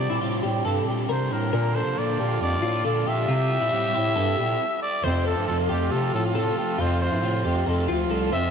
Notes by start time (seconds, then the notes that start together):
Already playing: D5
0.00 G3 C4 D4
0.10 A#2 E4
0.21 A2 C3 G3 C4 D4 F4
0.43 A2 G3 C4 D4 G4
0.64 G2 C3 G3 C4 D4 A4
0.87 A#2 G3 C4 D4 G4
1.09 C3 G3 C4 D4 A#4 C5
1.30 A2 G3 C4 D4 A#4 C5
1.53 A#2 D3 F3 A#3 D4 F4 A4 A#4
1.75 F3 A#3 D4 A4 C5
1.85 C3
1.97 A#2 D3 F3 A#3 D4 A4 D5
2.18 A#2 F3 A#3 D4 G4 A4
2.40 F2 F3 A#3 D4 A4 D5
2.61 A2 F3 A#3 D4 F4 A4
2.83 A#2 D3 F3 A#3 D4 A4 D5
3.05 A#2 F3 A#3 D4 G4 A4 E5
3.27 C3 G3 C4 E4 F4 G4
3.49 C4 E4 G4
3.61 A#2 E4
3.72 A2 C3 G3 C4 E4 F4 G4
3.94 A2 C4 E4 G4
4.16 G2 G3 C4 E4 G4 A4
4.38 A#2 E4 G4
4.42 C4
4.82 D5
5.04 F2 C3 F3 A3 C4 F4 C5
5.26 F3 A3 C4 A4
5.37 G2
5.48 F2 C3 F3 A3 C4 A4
5.69 F2 F3 A3 C4 G4
5.91 C3 F3 A3 C4 A4
6.13 A2 F3 A3 C4 F4 A4
6.35 F2 C3 F3 A3 C4 A4
6.57 F3 A3 C4 G4
6.78 F2 C3 F3 A3 C4 F4 C5
7.00 F3 A3 C4 C5
7.12 G2 E4
7.22 F2 A2 C3 F3 A3 C4 F4
7.45 F2 F3 A3 C4 G4
7.66 F2 C3 F3 A3 C4 F4 A4
7.88 D2 F3 A3 C4 F4
8.10 C2 F2 C3 F3 A3 C4 A4
8.31 F2 F3 A3 C4 C5 E5